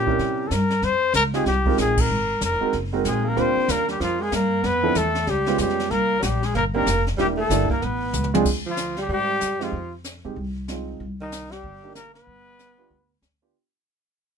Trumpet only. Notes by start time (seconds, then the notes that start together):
Already playing: G4
0.47 A4
0.53 A#4
0.84 C5
1.15 A#4
1.35 G#4
1.47 G4
1.81 G#4
2.01 A#4
2.44 A#4
3.08 G#4
3.29 A#4
3.40 C5
3.71 A#4
3.91 G4
4.03 F4
4.22 G#4
4.35 A#4
4.66 B4
4.97 A4
5.30 G4
5.61 G4
5.91 A#4
6.21 F#4 G4
6.45 G#4
6.57 A#4
6.76 A#4
7.20 G4
7.40 A4
7.72 A#4
7.85 B4
8.70 F4
9.01 G4
9.13 G4
9.64 F4
11.22 D#4
11.52 G4
11.96 A#4
12.15 B4